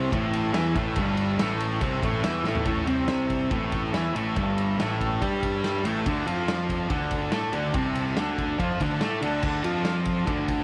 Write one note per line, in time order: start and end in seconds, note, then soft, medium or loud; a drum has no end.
0.00 0.11 C3 medium
0.00 0.12 C4 medium
0.00 0.10 C#5 medium
0.00 0.11 E5 medium
0.00 0.11 A5 loud
0.12 0.52 A1 medium
0.12 0.53 A2 loud
0.12 0.54 A3 loud
0.12 0.30 C#5 medium
0.12 0.30 E5 medium
0.12 0.32 A5 loud
0.12 kick loud
0.12 ride loud
0.31 0.51 C#5 loud
0.31 0.51 E5 loud
0.31 0.52 A5 loud
0.31 ride medium
0.53 0.74 E2 loud
0.53 0.75 E3 medium
0.53 0.75 E4 medium
0.53 0.72 C#5 loud
0.53 0.73 E5 loud
0.53 0.74 B5 loud
0.53 snare loud
0.53 ride medium
0.74 0.95 A1 medium
0.74 0.96 A2 medium
0.74 0.97 A3 medium
0.74 0.94 C#5 medium
0.74 0.94 E5 medium
0.74 0.94 A5 loud
0.74 kick loud
0.74 ride medium
0.95 1.36 G1 medium
0.95 1.39 G2 loud
0.95 1.40 G3 loud
0.95 1.15 C#5 loud
0.95 1.15 E5 loud
0.95 1.15 A5 loud
0.95 kick loud
0.95 ride loud
1.17 1.37 C#5 medium
1.17 1.38 E5 medium
1.17 1.38 A5 medium
1.17 ride medium
1.38 1.78 A1 medium
1.38 1.81 A2 medium
1.38 1.81 A3 loud
1.38 1.57 C#5 medium
1.38 1.58 E5 medium
1.38 1.59 B5 loud
1.38 snare loud
1.38 ride loud
1.59 1.79 C#5 medium
1.59 1.79 E5 medium
1.59 1.79 A5 medium
1.59 ride medium
1.81 2.01 C2 medium
1.81 2.02 C3 loud
1.81 2.03 C4 loud
1.81 2.00 C#5 medium
1.81 2.01 E5 medium
1.81 2.01 A5 loud
1.81 kick loud
1.81 ride loud
2.03 2.22 A1 loud
2.03 2.23 A2 medium
2.03 2.24 A3 loud
2.03 2.22 C#5 loud
2.03 2.22 E5 medium
2.03 2.23 A5 loud
2.03 kick loud
2.03 ride medium
2.24 2.43 E2 loud
2.24 2.44 E3 medium
2.24 2.45 E4 medium
2.24 2.43 C#5 medium
2.24 2.43 E5 loud
2.24 2.44 G5 loud
2.24 snare loud
2.24 ride loud
2.44 2.64 A1 medium
2.44 2.65 A2 medium
2.44 2.66 A3 loud
2.44 2.64 C#5 medium
2.44 2.64 E5 medium
2.44 2.65 A5 medium
2.44 snare medium
2.55 floor tom medium
2.65 2.86 A1 medium
2.65 2.87 A2 loud
2.65 2.87 A3 loud
2.65 2.85 C#5 loud
2.65 2.86 E5 medium
2.65 2.86 A5 loud
2.65 kick loud
2.65 ride loud
2.86 3.46 C2 medium
2.86 3.50 C3 medium
2.86 3.51 C4 medium
2.86 3.06 C#5 loud
2.86 3.07 E5 loud
2.86 3.07 G5 loud
2.86 ride medium
3.08 3.28 C#5 medium
3.08 3.29 E5 medium
3.08 3.29 A5 medium
3.08 snare loud
3.08 ride medium
3.29 3.47 C#5 medium
3.29 3.48 E5 medium
3.29 3.48 A5 loud
3.29 kick medium
3.29 ride medium
3.48 3.90 A1 medium
3.48 3.93 A2 medium
3.48 3.93 A3 loud
3.48 3.69 C#5 medium
3.48 3.69 E5 medium
3.48 3.70 A5 medium
3.48 kick loud
3.48 ride medium
3.70 3.86 C#5 medium
3.70 3.87 E5 medium
3.70 3.89 A5 medium
3.70 kick medium
3.70 ride medium
3.87 4.10 C#5 medium
3.87 4.10 E5 loud
3.87 4.11 A5 loud
3.92 4.12 E2 medium
3.92 4.14 E3 medium
3.92 4.15 E4 loud
3.92 snare loud
3.92 ride medium
4.13 4.34 A1 medium
4.13 4.35 A2 medium
4.13 4.36 A3 loud
4.13 4.33 C#5 medium
4.13 4.34 E5 medium
4.13 4.34 A5 loud
4.13 ride medium
4.36 4.76 G1 medium
4.36 4.78 G2 loud
4.36 4.78 G3 loud
4.36 4.54 C#5 loud
4.36 4.55 E5 loud
4.36 4.55 A5 loud
4.36 kick loud
4.36 ride loud
4.55 4.75 C#5 loud
4.55 4.76 E5 loud
4.55 4.77 A5 loud
4.55 ride medium
4.77 5.17 A1 loud
4.77 5.20 A2 medium
4.77 5.21 A3 medium
4.77 4.97 C#5 medium
4.77 4.98 E5 medium
4.77 4.97 A5 loud
4.77 snare loud
4.77 ride medium
4.99 5.18 C#5 medium
4.99 5.19 E5 medium
4.99 5.19 A5 medium
4.99 kick medium
4.99 ride medium
5.19 5.81 G2 loud
5.19 5.84 G3 medium
5.19 5.85 G4 loud
5.19 5.39 C#5 medium
5.19 5.39 E5 medium
5.19 5.40 A5 medium
5.19 kick loud
5.19 ride loud
5.41 5.61 C#5 medium
5.41 5.61 E5 medium
5.41 5.61 A5 medium
5.41 kick medium
5.41 ride medium
5.64 5.83 C#5 loud
5.64 5.83 E5 loud
5.64 5.84 A5 loud
5.64 snare medium
5.64 ride medium
5.83 6.04 A1 loud
5.83 6.05 A2 medium
5.83 6.05 A3 loud
5.83 6.04 C#5 medium
5.83 6.05 E5 medium
5.83 ride medium
5.88 6.05 G5 medium
6.06 6.25 D2 medium
6.06 6.26 D3 loud
6.06 6.27 D4 loud
6.06 6.25 A4 loud
6.06 6.26 D5 medium
6.06 6.26 A5 loud
6.06 kick loud
6.06 ride loud
6.26 6.86 F2 medium
6.26 6.89 F3 medium
6.26 6.90 F4 loud
6.26 6.46 A4 loud
6.26 6.47 D5 loud
6.26 6.47 A5 loud
6.26 ride medium
6.48 6.68 A4 medium
6.48 6.69 D5 medium
6.48 snare loud
6.48 ride loud
6.52 6.69 A5 medium
6.69 6.89 A4 medium
6.69 6.90 D5 medium
6.69 kick medium
6.69 ride medium
6.74 6.90 A5 medium
6.90 7.29 D2 medium
6.90 7.31 D3 loud
6.90 7.32 D4 loud
6.90 7.10 A4 medium
6.90 7.11 D5 medium
6.90 7.11 A5 medium
6.90 kick loud
6.90 ride loud
7.11 7.32 A4 medium
7.11 kick medium
7.11 ride medium
7.15 7.32 D5 medium
7.15 7.33 A5 medium
7.32 7.52 A2 medium
7.32 7.53 A3 medium
7.32 7.53 A4 loud
7.32 7.52 A4 loud
7.32 7.53 A5 loud
7.32 snare loud
7.32 ride medium
7.36 7.53 D5 medium
7.52 7.73 D2 medium
7.52 7.73 D3 medium
7.52 7.74 D4 loud
7.52 ride medium
7.57 7.74 A4 medium
7.57 7.74 D5 medium
7.57 7.75 A5 loud
7.74 8.14 C2 medium
7.74 8.16 C3 medium
7.74 8.17 C4 loud
7.74 7.94 A4 loud
7.74 7.94 D5 loud
7.74 7.95 A5 loud
7.74 kick loud
7.74 ride loud
7.95 8.16 A4 loud
7.95 8.16 D5 loud
7.95 8.16 A5 loud
7.95 ride medium
8.16 8.56 D2 medium
8.16 8.58 D3 medium
8.16 8.59 D4 loud
8.16 8.37 A4 medium
8.16 8.37 D5 medium
8.16 snare loud
8.16 ride medium
8.21 8.38 A5 medium
8.38 8.57 A4 medium
8.38 8.57 D5 medium
8.38 8.58 A5 medium
8.38 kick medium
8.38 ride medium
8.59 8.79 F2 medium
8.59 8.79 F3 medium
8.59 8.80 F4 loud
8.59 8.78 A4 medium
8.59 8.79 D5 medium
8.59 8.79 A5 medium
8.59 kick loud
8.59 ride loud
8.80 9.00 D2 loud
8.80 9.01 D3 medium
8.80 9.01 D4 loud
8.80 9.00 A4 medium
8.80 9.00 D5 medium
8.80 9.00 A5 medium
8.80 kick medium
8.80 ride medium
9.00 9.20 A2 loud
9.00 9.22 A3 medium
9.00 9.21 A4 loud
9.00 9.22 A4 medium
9.00 9.21 D5 medium
9.00 9.21 E5 loud
9.00 snare loud
9.00 ride medium
9.21 9.41 D2 medium
9.21 9.42 D3 medium
9.21 9.42 D4 loud
9.21 ride medium
9.25 9.42 A4 medium
9.25 9.43 D5 medium
9.25 9.43 A5 loud
9.43 9.63 D2 medium
9.43 9.63 D3 medium
9.43 9.64 D4 loud
9.43 kick loud
9.43 crash loud
9.47 9.64 A4 medium
9.47 9.64 D5 medium
9.47 9.64 A5 loud
9.64 10.23 F2 medium
9.64 10.26 F3 medium
9.64 10.27 F4 medium
9.64 9.84 A4 loud
9.64 9.84 D5 loud
9.64 9.85 A5 loud
9.64 ride medium
9.85 10.05 A4 medium
9.85 10.05 D5 medium
9.85 10.06 A5 medium
9.85 snare loud
9.85 ride medium
10.05 10.24 A4 medium
10.05 10.25 D5 medium
10.05 10.26 A5 medium
10.05 kick medium
10.05 ride medium
10.26 10.64 D2 medium
10.26 10.64 D3 loud
10.26 10.64 D4 loud
10.26 10.45 A4 medium
10.26 10.46 D5 medium
10.26 10.46 A5 loud
10.26 kick loud
10.26 ride loud
10.48 10.64 A4 medium
10.48 10.64 D5 medium
10.48 10.64 A5 medium
10.48 kick medium
10.48 ride medium